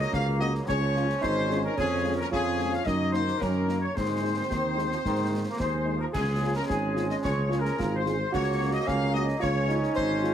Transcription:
Already playing: F#3 A#3 C#4
0.00 D#5
0.13 C#2 F5, concert bass drum, snare
0.39 A#3 C#4 F#4 D#5, snare
0.55 snare
0.66 C#2 F3 C#4 G#4 C#5, concert bass drum, snare
0.95 G#3 C#4 F4, snare
1.09 snare
1.20 G#1 D#4 C5, concert bass drum, snare
1.50 G#3 C#4 F4, snare
1.64 A#4
1.76 F2 F3 C#4 G#4, concert bass drum, snare, crash
2.04 G#3 C#4 F4
2.16 A#4
2.30 F2 F3 C#4 F4 G#4, concert bass drum, snare
2.59 G#3 C#4 F4, snare
2.70 F5, snare
2.75 F5
2.84 F#2 D#3 A#3 D#4 D#5, concert bass drum, snare
3.11 A#3 D#4 C5, snare
3.28 snare
3.39 F#2 D#3 A#3 C#4 A#4, concert bass drum, snare
3.67 A#3 D#4, snare
3.80 C#5
3.93 G#2 D#3 G#3 C4 C5, concert bass drum, snare, crash
4.21 G#3 D#4
4.47 D#2 D#3, concert bass drum, snare
4.75 G#3 D#4, snare
4.92 F3, snare
5.05 G#2 D#3, concert bass drum, snare
5.30 G#3 D#4
5.49 A#3
5.59 D#2 G#3 C5, concert bass drum, snare
5.85 G#3 D#4
5.94 F3
5.99 A#4
6.12 C#2 F3 G#3 C#4 G#4, concert bass drum, snare, crash
6.41 G#3 C#4 F4
6.55 A#4
6.66 G#1 G#4, concert bass drum, snare
6.95 G#3 C#4 F4, snare
7.09 D#5, snare
7.23 C#2 C#5, concert bass drum, snare
7.50 G#3 C#4 F4, snare
7.59 A#4
7.65 snare
7.78 G#1 F4, concert bass drum, snare
7.95 C5
8.06 G#3 C#4 F4 G#4, snare
8.31 C#2 F#3 A#3 F#4 C#5, concert bass drum, snare, crash
8.59 A#3 C#4 F#4
8.73 D#5
8.86 C#2 C#4 F5, concert bass drum, snare
9.13 A#3 C#4 F#4 D#5, snare
9.28 snare
9.40 C#2 F3 C#4 F4 C#5, concert bass drum, snare
9.68 G#3 C#4 D#4 F4, snare
9.83 snare
9.94 G#1 C5, concert bass drum, snare
10.22 G#3 C#4 F4, snare

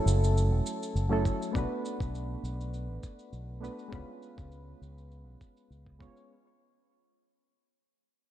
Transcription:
Already playing: F#3 A3 C#4 E4 A4
0.06 F#1, cabasa
0.24 cabasa
0.37 cabasa
0.51 E1
0.66 cabasa
0.83 cabasa
0.95 F#1, cabasa
1.09 F#3 A3 C#4 E4 A4
1.25 kick, cabasa
1.42 cabasa
1.52 B1 A3 B3 D4, kick
1.56 F#4 B4, cabasa
1.85 cabasa
2.00 B1, kick, cabasa
2.15 cabasa
2.43 B1, cabasa
2.61 cabasa
2.74 cabasa
2.89 A1
3.03 kick, cabasa
3.19 cabasa
3.33 B1, cabasa
3.61 A3 B3 D4 F#4 B4, cabasa
3.79 cabasa
3.88 G#3 B3 C#4
3.92 C#2 F4 B4, kick, cabasa
4.22 cabasa
4.38 C#2, kick, cabasa
4.52 cabasa
4.82 C#2, cabasa
4.98 cabasa
5.12 cabasa
5.26 B1
5.41 kick, cabasa
5.57 cabasa
5.70 C#2, cabasa
5.86 kick
5.99 G#3 B3 C#4 F4 C#5, kick, cabasa
6.17 cabasa

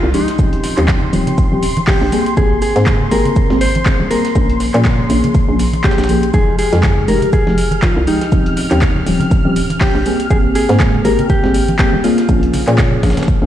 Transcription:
Already playing: F4 C6
0.03 C2
0.14 F3 G#3 D#4 G4, open hi-hat, shaker
0.28 snare, closed hi-hat
0.38 D#1 F3 C4 C#4 G4, kick, closed hi-hat, high conga, shaker
0.53 closed hi-hat
0.64 snare, open hi-hat, shaker
0.77 D#2 F3 C4 C#4 G4, clap, closed hi-hat
0.88 kick, snare, clap, closed hi-hat, shaker
1.02 low conga
1.13 D#1 F3 C4 C#4 G4, open hi-hat, high conga, shaker
1.27 closed hi-hat, low conga
1.38 kick, closed hi-hat, shaker
1.52 D#1 F3 C4 C#4 G4
1.63 open hi-hat, shaker
1.77 closed hi-hat, high conga
1.87 F3 C4 C#4 G4, kick, snare, clap, closed hi-hat, open hi-hat
2.01 A#1
2.12 G3 A#3 C4 G#4, open hi-hat, shaker
2.26 closed hi-hat
2.37 G#1 A#3 C4 G4 G#4, kick, closed hi-hat, high conga, shaker
2.62 G#4, open hi-hat, shaker
2.76 G#2 G#3 A#3 C4 G#4, snare, closed hi-hat
2.86 kick, snare, clap, closed hi-hat, shaker
3.01 low conga
3.11 G#1 A#3 C4 G4 G#4 A#4, open hi-hat, high conga, shaker
3.25 closed hi-hat, low conga
3.36 kick, closed hi-hat, shaker
3.50 G#1 G3 A#3 C4 G#4, snare
3.61 C5, open hi-hat, shaker
3.75 closed hi-hat, high conga
3.86 G3 A#3 C4 G#4, kick, snare, clap, closed hi-hat, shaker
4.00 D#1
4.10 G3 A#3 C4 G#4 A#4, open hi-hat, shaker
4.25 snare, closed hi-hat
4.35 A#1 F3 A#3 C#4 G#4, kick, closed hi-hat, high conga, shaker
4.50 closed hi-hat
4.60 snare, open hi-hat, shaker
4.74 A#2 F3 A#3 C#4 G#4, clap, closed hi-hat
4.85 kick, snare, clap, closed hi-hat, shaker
4.99 low conga
5.09 A#1 F3 A#3 C#4 G#4, open hi-hat, high conga, shaker
5.24 closed hi-hat, low conga
5.35 kick, closed hi-hat, shaker
5.48 A#1 F3 A#3 C#4 G#4
5.59 open hi-hat, shaker
5.73 closed hi-hat, high conga
5.84 F3 A#3 C#4 G4 G#4, kick, snare, clap, closed hi-hat, shaker
5.91 snare, shaker
5.98 A#1, snare, shaker
6.04 snare, shaker
6.09 F3 A#3 C#4 G#4, open hi-hat, shaker
6.23 closed hi-hat
6.33 F1 F3 G#3 D#4 G4 G#4 F6, kick, closed hi-hat, high conga, shaker
6.59 G#4, open hi-hat, shaker
6.72 F2 F3 G#3 D#4 G#4, snare, closed hi-hat
6.83 kick, snare, clap, closed hi-hat, shaker
6.98 low conga
7.08 F1 F3 G#3 D#4 G4 A#4, open hi-hat, high conga, shaker
7.22 closed hi-hat, low conga
7.33 G#4, kick, closed hi-hat, shaker
7.47 F1 F3 G#3 D#4 G4, snare
7.58 open hi-hat, shaker
7.71 closed hi-hat, high conga
7.82 F3 G#3 D#4 F4 G4, kick, snare, clap, closed hi-hat, shaker
7.97 C2
8.07 F3 G#3 D#4 G4, open hi-hat, shaker
8.21 snare, closed hi-hat
8.32 D#1 F3 C4 C#4 G4, kick, closed hi-hat, high conga, shaker
8.46 closed hi-hat
8.57 snare, open hi-hat, shaker
8.71 D#2 F3 C4 C#4 G4, clap, closed hi-hat
8.82 kick, snare, clap, closed hi-hat, shaker
8.96 low conga
9.06 D#1 F3 C4 C#4 G4, open hi-hat, high conga, shaker
9.20 closed hi-hat, low conga
9.31 kick, closed hi-hat, shaker
9.45 D#1 F3 C4 C#4 G4
9.56 open hi-hat, shaker
9.70 closed hi-hat, high conga
9.81 F3 C4 C#4 G4, kick, snare, clap, closed hi-hat, open hi-hat
9.95 A#1
10.05 G3 A#3 C4 G#4, open hi-hat, shaker
10.20 closed hi-hat
10.30 G#1 A#3 C4 G4 G#4, kick, closed hi-hat, high conga, shaker
10.55 G#4, open hi-hat, shaker
10.69 G#2 G#3 A#3 C4 G#4, snare, closed hi-hat
10.80 kick, snare, clap, closed hi-hat, shaker
10.95 low conga
11.04 G#1 A#3 C4 G4 G#4 A#4, open hi-hat, high conga, shaker
11.19 closed hi-hat, low conga
11.30 G4, kick, closed hi-hat, shaker
11.43 G#1 G3 A#3 C4 G#4, snare
11.54 open hi-hat, shaker
11.68 closed hi-hat, high conga
11.79 G3 A#3 C4 G4 G#4, kick, snare, clap, closed hi-hat, shaker
11.93 D#1
12.04 G3 A#3 C4 F4 G#4, open hi-hat, shaker
12.18 snare, closed hi-hat
12.28 A#1 F3 A#3 C#4 G#4, kick, closed hi-hat, high conga, shaker
12.43 closed hi-hat
12.54 snare, open hi-hat, low conga, shaker
12.67 A#2 F3 A#3 C#4 G#4, clap, closed hi-hat
12.78 kick, snare, clap, closed hi-hat, shaker
12.92 low conga
13.03 A#1 F3 A#3 C#4 G#4, kick, snare, open hi-hat, high conga, shaker
13.10 snare, shaker
13.17 snare, closed hi-hat, low conga, shaker
13.23 snare, shaker
13.28 kick, closed hi-hat
13.42 A#1 F3 A#3 C#4 G#4

